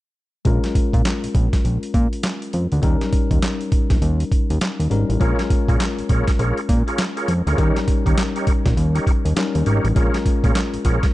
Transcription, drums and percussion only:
0.45 kick, closed hi-hat
0.64 snare, closed hi-hat
0.75 kick, closed hi-hat
0.93 kick, closed hi-hat
1.05 snare, clap, closed hi-hat
1.24 closed hi-hat
1.35 kick, closed hi-hat
1.53 kick, snare, closed hi-hat
1.65 closed hi-hat
1.83 closed hi-hat
1.94 kick, closed hi-hat
2.13 closed hi-hat
2.23 snare, clap, closed hi-hat
2.42 closed hi-hat
2.53 closed hi-hat
2.72 closed hi-hat
2.83 kick, closed hi-hat
3.01 snare, closed hi-hat
3.13 kick, closed hi-hat
3.31 kick, closed hi-hat
3.42 snare, clap, closed hi-hat
3.61 closed hi-hat
3.72 kick, closed hi-hat
3.90 kick, snare, closed hi-hat
4.02 closed hi-hat
4.20 closed hi-hat
4.32 kick, closed hi-hat
4.50 closed hi-hat
4.61 snare, clap, closed hi-hat
4.80 closed hi-hat
4.91 closed hi-hat
5.10 closed hi-hat
5.21 kick, closed hi-hat
5.39 snare, closed hi-hat
5.50 kick, closed hi-hat
5.68 kick, closed hi-hat
5.80 snare, clap, closed hi-hat
5.99 closed hi-hat
6.09 kick, closed hi-hat
6.28 kick, snare, closed hi-hat
6.39 closed hi-hat
6.57 closed hi-hat
6.69 kick, closed hi-hat
6.88 closed hi-hat
6.98 snare, clap, closed hi-hat
7.17 closed hi-hat
7.28 closed hi-hat
7.47 closed hi-hat
7.58 kick, closed hi-hat
7.76 snare, closed hi-hat
7.88 kick, closed hi-hat
8.06 kick, closed hi-hat
8.17 snare, clap, closed hi-hat
8.36 closed hi-hat
8.47 kick, closed hi-hat
8.66 kick, snare, closed hi-hat
8.77 closed hi-hat
8.95 closed hi-hat
9.07 kick, closed hi-hat
9.26 closed hi-hat
9.36 snare, clap, closed hi-hat
9.55 closed hi-hat
9.66 closed hi-hat
9.85 closed hi-hat
9.96 kick, closed hi-hat
10.14 snare, closed hi-hat
10.26 kick, closed hi-hat
10.44 kick, closed hi-hat
10.55 snare, clap, closed hi-hat
10.74 closed hi-hat
10.85 kick, closed hi-hat
11.03 kick, snare, closed hi-hat

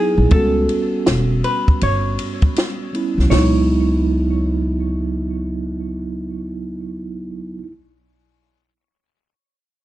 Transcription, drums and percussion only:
0.31 kick, ride
0.69 ride
1.06 snare, hi-hat pedal, ride
1.44 ride
1.68 kick
1.81 ride
2.19 ride
2.42 kick, ride
2.56 snare, hi-hat pedal, ride
2.94 ride
3.19 snare
3.31 snare, floor tom, open hi-hat

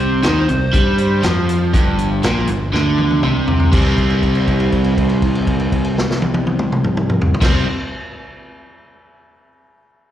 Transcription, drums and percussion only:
0.23 snare, closed hi-hat
0.49 closed hi-hat
0.74 kick, closed hi-hat
0.98 closed hi-hat
1.23 snare, closed hi-hat
1.49 closed hi-hat
1.74 kick, closed hi-hat
1.99 closed hi-hat
2.23 snare, closed hi-hat
2.47 closed hi-hat
2.74 snare
2.98 high tom
3.11 high tom
3.23 mid tom
3.48 floor tom
3.60 floor tom
3.73 kick, crash
3.98 kick, crash
4.10 crash
4.23 kick, crash
4.35 crash
4.48 kick, crash
4.60 crash
4.72 kick, crash
4.84 crash
4.97 kick, crash
5.09 crash
5.22 kick, crash
5.35 crash
5.47 kick, crash
5.60 crash
5.72 kick, crash
5.85 crash
5.98 snare
6.11 snare
6.22 high tom
6.34 high tom
6.47 high tom
6.59 mid tom
6.72 mid tom
6.84 mid tom
6.97 mid tom
7.10 mid tom
7.21 floor tom
7.34 floor tom
7.42 kick, snare, crash

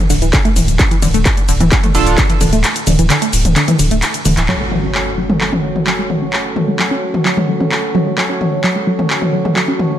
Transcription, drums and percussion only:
0.10 open hi-hat, ride, shaker
0.22 closed hi-hat, shaker
0.33 kick, clap, closed hi-hat, ride, shaker
0.45 closed hi-hat, shaker
0.56 open hi-hat, mid tom, ride, shaker
0.68 closed hi-hat, shaker
0.79 kick, clap, closed hi-hat, ride, shaker
0.91 closed hi-hat, shaker
1.02 open hi-hat, mid tom, ride, shaker
1.14 closed hi-hat, shaker
1.26 kick, clap, closed hi-hat, ride, shaker
1.37 closed hi-hat, shaker
1.49 open hi-hat, ride, shaker
1.60 closed hi-hat, mid tom, shaker
1.72 kick, clap, closed hi-hat, ride, shaker
1.83 closed hi-hat, mid tom, shaker
1.95 open hi-hat, ride, shaker
2.07 closed hi-hat, shaker
2.18 kick, clap, closed hi-hat, ride, shaker
2.30 closed hi-hat, shaker
2.41 open hi-hat, mid tom, ride, shaker
2.53 closed hi-hat, shaker
2.64 clap, closed hi-hat, ride, shaker
2.76 closed hi-hat, shaker
2.87 open hi-hat, mid tom, ride, shaker
2.99 closed hi-hat, shaker
3.10 clap, closed hi-hat, ride, shaker
3.22 closed hi-hat, shaker
3.33 open hi-hat, ride, shaker
3.45 closed hi-hat, mid tom, shaker
3.56 clap, closed hi-hat, ride, shaker
3.68 closed hi-hat, mid tom, shaker
3.79 open hi-hat, ride, shaker
3.91 closed hi-hat, shaker
4.02 clap, closed hi-hat, ride, shaker
4.14 closed hi-hat, shaker
4.25 open hi-hat, mid tom, ride, shaker
4.37 clap, closed hi-hat, shaker
4.48 clap
4.72 mid tom
4.95 clap
5.30 mid tom
5.41 clap
5.53 mid tom
5.76 mid tom
5.87 clap
6.10 mid tom
6.33 clap
6.56 mid tom
6.79 clap
7.14 mid tom
7.25 clap
7.37 mid tom
7.60 mid tom
7.72 clap
7.95 mid tom
8.18 clap
8.41 mid tom
8.64 clap
8.99 mid tom
9.10 clap
9.22 mid tom
9.45 mid tom
9.56 clap
9.79 mid tom

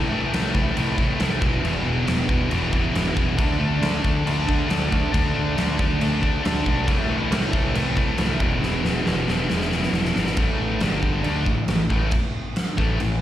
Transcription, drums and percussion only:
0.34 snare, crash
0.55 kick
0.77 crash
0.98 kick
1.20 snare, crash
1.42 kick
1.65 crash
2.08 snare, crash
2.29 kick
2.51 crash
2.73 kick
2.95 snare, crash
3.17 kick
3.38 kick, crash
3.83 snare, crash
4.04 kick
4.27 crash
4.49 kick
4.70 snare, crash
4.92 kick
5.14 kick, crash
5.58 snare, crash
5.79 kick
6.01 crash
6.23 kick
6.45 snare, crash
6.66 kick
6.88 kick, crash
7.32 snare, crash
7.53 kick
7.75 crash
7.97 kick
8.18 snare, crash
8.40 kick
8.63 snare
8.85 snare
9.06 snare
9.28 snare
9.50 snare
9.61 snare
9.71 snare
9.83 snare
9.94 snare
10.05 snare
10.16 snare
10.26 snare
10.36 kick, crash
10.80 snare, crash
11.03 kick
11.24 crash
11.46 kick
11.68 snare, crash
11.90 kick
12.11 kick, crash
12.56 snare, crash
12.78 kick
13.00 crash

